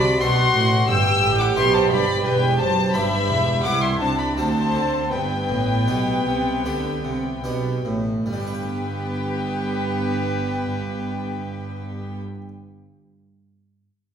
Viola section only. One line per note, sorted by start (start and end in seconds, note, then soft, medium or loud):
0.00 0.20 F#4 medium
0.21 0.87 F#4 medium
0.89 2.24 G4 loud
2.25 2.93 G4 medium
2.94 3.63 G4 medium
3.64 4.00 E4 medium
4.00 4.36 D4 medium
4.36 5.11 C4 medium
5.11 7.98 B3 medium
8.25 12.20 B3 medium